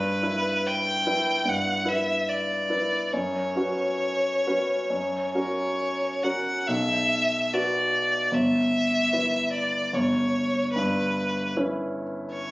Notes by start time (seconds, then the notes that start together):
Already playing: G2 B4
0.23 E4 B4
0.67 G5
1.07 E4 B4
1.45 G2 F#5
1.85 E4 B4 E5
2.29 D5
2.70 E4 B4
3.12 F#2 C#5
3.56 C#4 F#4 B4
4.47 C#4 F#4 B4
4.90 F#2
5.35 C#4 F#4 A#4 C#5
6.24 C#4 F#4 A#4 F#5
6.68 B1 E5
7.53 F#4 B4 D5
8.32 G1 E5
9.13 E4 B4
9.53 D5
9.93 G1 C#5
10.73 G2 B4
11.57 C#4 E4 B4
12.32 C#5